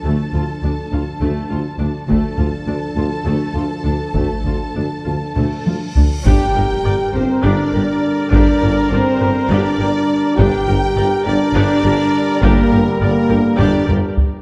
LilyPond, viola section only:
\new Staff \with { instrumentName = "Viola section" } { \time 7/8 \key d \minor \tempo 4 = 102 a8 f'8 d'8 f'8 a8 f'8 d'8 | a8 f'8 d'8 f'8 a8 f'8 d'8 | a8 f'8 d'8 f'8 a8 f'8 d'8 | \key g \minor <d' g'>8 <g' bes'>8 <bes' d''>8 <g' bes'>8 <d' g'>8 <g' bes'>8 r8 |
<d' g'>8 <g' bes'>8 <bes' d''>8 <g' bes'>8 <d' g'>8 <g' bes'>8 r8 | <d' g'>8 <g' bes'>8 <bes' d''>8 <g' bes'>8 <d' g'>8 <g' bes'>8 r8 | <d' g'>8 <g' bes'>8 <bes' d''>8 <g' bes'>8 <d' g'>8 <g' bes'>8 r8 | }